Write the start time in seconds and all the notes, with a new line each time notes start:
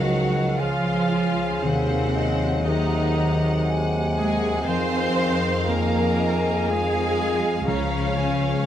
Already playing: C#2 C#3 D#3 F3 F#3 G#3 F#4 G#4 D#5 F5 F#5
0.07 F5 F#5
0.59 C#3 F3 F4 G#4 F5 G#5
1.11 F4 F5
1.63 D#2 C3 D#3 F#3 C4 C5 F5 F#5
2.15 G#3 D#5
2.65 C3 D#3 D#4 G#4 D#5 F#5 A#5
3.16 C3 F#5
3.67 G#4 G#5
4.17 G#3 F#4 G#4 G#5
4.67 F2 D#3 F3 C4 G#4 C5 F5 C6
5.18 F4
5.68 A#3 A#4 C#5 F5 G#5 A#5
6.18 D#5 G#5
6.68 G#3 G#4 F5 G#5
7.67 C#2 C#3 C#4 C#5 F5 A#5
8.17 C#4 G#5